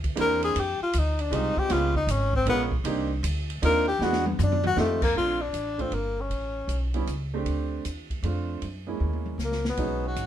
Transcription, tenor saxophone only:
0.20 0.42 A#4 medium
0.44 0.61 G#4 medium
0.60 0.82 G4 medium
0.83 1.00 F4 medium
0.98 1.22 D#4 medium
1.21 1.37 D4 medium
1.35 1.60 D#4 medium
1.59 1.74 G4 loud
1.72 1.96 F4 medium
1.96 2.13 D#4 medium
2.11 2.35 C#4 medium
2.36 2.47 C4 medium
2.49 2.64 B3 medium
3.65 3.87 A#4 medium
3.88 4.05 G4 medium
4.04 4.27 F#4 medium
4.27 4.43 B3 medium
4.43 4.66 D4 medium
4.67 4.78 F#4 loud
4.80 5.02 A3 medium
5.03 5.15 A#3 medium
5.17 5.43 F4 medium
5.41 5.82 D4 medium
5.81 5.95 C4 medium
5.94 6.22 A#3 medium
6.20 6.96 C#4 medium
9.44 9.66 A#3 medium
9.69 10.08 B3 medium
10.07 10.26 F#4 medium

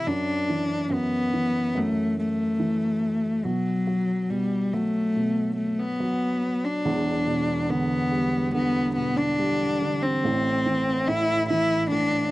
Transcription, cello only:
0.07 0.94 D4 medium
0.92 1.79 B3 medium
1.77 2.18 A3 medium
2.19 3.46 A3 medium
3.45 4.31 F#3 medium
4.30 4.74 G3 medium
4.73 5.56 A3 medium
5.57 5.81 A3 medium
5.79 6.66 B3 medium
6.64 7.72 D4 medium
7.70 8.54 B3 medium
8.55 8.94 B3 medium
8.96 9.18 B3 medium
9.16 10.04 D4 medium
10.02 11.09 C4 medium
11.08 11.49 E4 loud
11.50 11.89 E4 medium
11.91 12.31 D4 medium

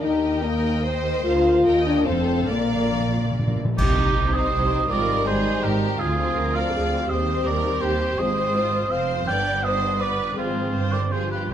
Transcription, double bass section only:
0.03 1.25 D#2 medium
1.25 1.65 D2 medium
1.66 2.06 D#2 medium
2.07 2.50 F1 medium
2.49 3.57 A#1 medium
3.78 4.11 C2 medium
4.15 4.48 C2 medium
4.52 4.85 C2 medium
4.89 5.21 G#1 medium
5.26 5.59 G#1 medium
5.62 5.95 G#1 medium
5.99 6.32 D2 medium
6.36 6.68 D2 medium
6.73 7.05 D2 medium
7.09 7.41 D#2 medium
7.46 7.78 D#2 medium
7.82 8.14 D#2 medium
8.19 8.87 G#1 medium
8.92 9.28 F1 medium
9.27 10.38 G1 medium
10.38 10.72 G#1 medium
10.74 11.51 G1 medium

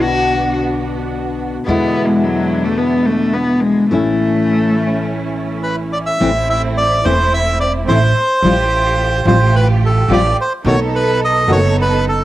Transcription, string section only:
0.00 1.57 B3 medium
0.00 1.56 D4 medium
0.00 1.57 F#4 medium
1.67 3.80 G#3 medium
1.67 3.80 D4 medium
1.67 3.80 E4 medium
3.92 6.08 A3 medium
3.92 6.08 C#4 medium
3.92 6.08 E4 medium
6.20 7.00 A3 medium
6.20 7.00 C4 medium
6.20 7.00 E4 medium
7.03 7.83 A3 medium
7.03 7.83 C4 medium
7.03 7.84 E4 medium
7.88 8.11 A3 medium
7.88 8.11 C4 medium
7.88 8.11 E4 medium
8.42 9.22 A3 medium
8.42 9.22 F4 medium
8.42 9.22 G4 medium
9.26 10.05 A3 medium
9.26 10.05 F4 medium
9.26 10.05 G4 loud
10.09 10.33 A3 medium
10.09 10.33 F4 medium
10.09 10.33 G4 loud
10.64 11.44 B3 medium
10.64 11.44 D#4 medium
10.64 11.44 A4 loud
11.48 12.24 B3 medium
11.48 12.24 D#4 medium
11.48 12.24 A4 loud

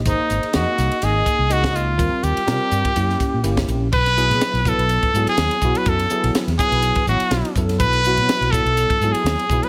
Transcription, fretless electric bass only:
0.05 0.16 G#1 medium
0.30 0.40 G#1 medium
0.55 0.65 F2 medium
0.78 0.88 C2 medium
1.02 1.21 G#1 loud
1.39 1.50 C2 medium
1.50 1.99 C#2 medium
1.99 2.09 D#2 medium
2.13 muted fretless electric bass stroke soft
2.23 2.33 D#2 medium
2.47 2.58 C3 medium
2.71 2.82 G2 medium
2.96 3.15 F#2 medium
3.34 3.42 A#2 medium
3.44 3.66 G1 medium
3.68 3.90 A#1 medium
3.92 4.31 B1 medium
4.29 4.38 B2 medium
4.40 muted fretless electric bass stroke soft
4.53 4.72 B1 medium
4.78 4.97 B1 medium
5.14 5.24 G#2 medium
5.26 muted fretless electric bass stroke soft
5.37 5.48 D#2 medium
5.62 5.72 B1 medium
5.86 6.05 F#2 medium
6.23 6.32 B1 medium
6.47 6.56 E2 medium
6.71 6.90 B1 medium
7.07 7.17 A1 medium
7.20 muted fretless electric bass stroke soft
7.31 7.41 B1 medium
7.55 7.82 F#2 medium
7.80 8.18 B1 medium
8.17 8.25 B2 medium
8.28 muted fretless electric bass stroke soft
8.41 8.60 B1 medium
8.65 8.84 B1 medium
9.01 9.11 G#2 medium
9.14 muted fretless electric bass stroke soft
9.24 9.35 D#2 medium
9.49 9.60 B1 medium

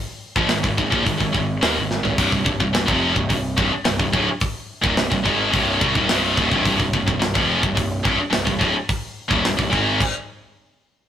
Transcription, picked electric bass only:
0.36 0.49 A#1 medium
0.52 0.63 G#1 medium
0.64 0.77 G#1 medium
0.79 0.92 G#1 medium
0.93 1.06 A#1 loud
1.07 1.20 G#1 medium
1.21 1.34 G#1 medium
1.35 1.61 G#1 medium
1.64 1.76 D#2 medium
1.78 2.03 G#1 medium
2.05 2.18 G#1 medium
2.19 2.32 C1 loud
2.33 2.46 C1 medium
2.47 2.59 C1 medium
2.60 2.73 C1 medium
2.75 2.88 C1 medium
2.89 3.15 F1 medium
3.17 3.29 C1 medium
3.31 3.56 C1 medium
3.58 3.71 C1 loud
3.74 muted picked electric bass stroke soft
3.88 4.00 C1 medium
4.00 4.13 C1 medium
4.14 4.27 D1 loud
4.84 4.97 D#1 medium
4.99 5.11 C1 medium
5.12 5.25 C1 medium
5.26 5.52 G#1 medium
5.54 5.80 C1 medium
5.81 5.95 C2 loud
5.96 6.09 D#1 medium
6.10 6.36 C1 medium
6.38 6.51 D#1 loud
6.52 6.65 C1 loud
6.66 6.79 C1 loud
6.80 6.93 C1 medium
6.94 7.07 C1 medium
7.08 7.21 C1 medium
7.24 7.35 C1 medium
7.36 7.62 F1 loud
7.64 7.76 C1 medium
7.78 8.03 C1 medium
8.05 8.18 C1 medium
8.22 muted picked electric bass stroke soft
8.35 8.46 C1 medium
8.47 8.60 C1 medium
8.62 8.75 D1 loud
9.31 9.44 D#1 medium
9.46 9.58 C1 medium
9.59 9.72 C1 medium
9.73 9.99 G#1 medium

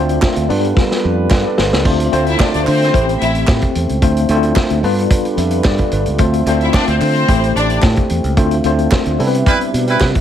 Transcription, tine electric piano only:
0.00 0.49 A3 medium
0.00 0.49 C4 medium
0.00 0.48 D4 medium
0.00 0.49 F4 medium
0.00 0.50 C5 medium
0.49 1.36 G3 loud
0.49 1.37 B3 loud
0.49 1.31 D4 medium
0.49 1.31 F4 medium
0.49 1.31 B4 loud
1.31 1.45 B4 medium
1.31 1.45 F5 medium
1.46 1.58 A4 medium
1.46 1.58 D5 medium
1.58 1.72 F4 medium
1.58 1.72 B4 medium
1.73 1.85 D4 medium
1.73 1.98 G4 medium
1.85 2.04 A3 medium
1.85 2.04 C4 medium
1.85 2.04 D4 medium
1.85 2.04 F4 medium
1.85 2.04 C5 loud
2.12 2.85 A3 medium
2.12 2.85 C4 medium
2.12 2.86 D4 medium
2.12 2.86 F4 medium
2.12 2.86 C5 loud
2.93 3.81 A3 medium
2.93 3.81 C4 medium
2.93 3.81 E4 medium
2.93 3.81 G4 medium
2.93 3.82 C5 medium
4.02 4.21 A3 medium
4.02 4.21 C4 medium
4.02 4.21 D4 medium
4.02 4.21 F4 medium
4.02 4.22 C5 medium
4.30 4.84 A3 medium
4.30 4.84 C4 medium
4.30 4.83 D4 medium
4.30 4.37 E4 medium
4.30 4.85 C5 loud
4.37 4.83 F4 medium
4.83 5.71 G3 medium
4.83 5.71 B3 medium
4.83 5.71 D4 medium
4.83 5.71 F4 medium
4.83 5.71 B4 loud
5.38 5.63 E5 medium
5.66 5.91 D5 medium
5.93 6.18 B4 medium
6.19 6.38 A3 medium
6.19 6.38 C4 medium
6.19 6.39 D4 medium
6.19 6.39 F4 medium
6.19 6.39 C5 medium
6.47 7.20 A3 medium
6.47 7.21 C4 medium
6.47 7.21 D4 medium
6.47 7.21 F4 medium
6.47 7.21 C5 loud
7.28 8.16 A3 medium
7.28 8.16 C4 medium
7.28 8.16 E4 medium
7.28 8.16 G4 medium
7.28 8.16 C5 loud
8.38 8.56 A3 medium
8.38 8.56 C4 medium
8.38 8.57 D4 medium
8.38 8.57 F4 medium
8.38 8.57 C5 loud
8.65 9.19 A3 medium
8.65 9.19 C4 medium
8.65 9.20 D4 medium
8.65 9.20 F4 medium
8.65 9.20 C5 loud
9.19 10.06 G3 loud
9.19 10.07 B3 medium
9.19 10.07 C4 medium
9.19 10.07 E4 medium
9.19 9.26 A4 medium
9.27 10.11 B4 loud

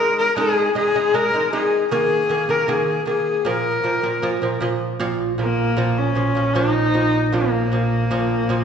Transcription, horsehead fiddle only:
0.00 0.18 A#4 loud
0.18 0.36 A#4 medium
0.37 0.73 G#4 loud
0.76 1.16 G#4 loud
1.14 1.52 A#4 loud
1.52 1.88 G#4 medium
1.91 2.52 G#4 loud
2.50 2.71 A#4 medium
2.69 3.07 G#4 medium
3.07 3.48 G#4 medium
3.46 4.62 A#4 medium
5.40 5.99 A#3 medium
5.98 6.55 C#4 medium
6.54 7.35 D#4 loud
7.33 8.64 A#3 medium

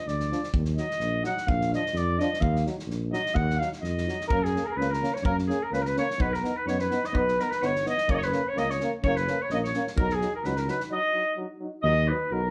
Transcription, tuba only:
0.05 0.31 D2 medium
0.53 0.79 D#2 loud
1.00 1.26 A#1 medium
1.47 1.73 A#1 loud
1.93 2.20 F2 medium
2.40 2.67 D#2 loud
2.86 3.13 A#1 medium
3.34 3.60 D#2 loud
3.82 4.08 F2 loud
4.29 4.55 F#2 loud
4.76 5.02 C#2 medium
5.23 5.49 F#2 loud
5.71 5.97 C#2 medium
6.18 6.45 B1 loud
6.66 6.92 F#2 medium
7.12 7.39 B1 loud
7.61 7.87 G1 medium
8.08 8.34 F#1 medium
8.57 8.82 C#2 medium
9.02 9.28 F#1 loud
9.50 9.76 A#1 medium
9.96 10.22 B1 loud
10.44 10.70 C#2 medium
11.83 12.10 D#2 loud
12.31 12.50 B1 loud

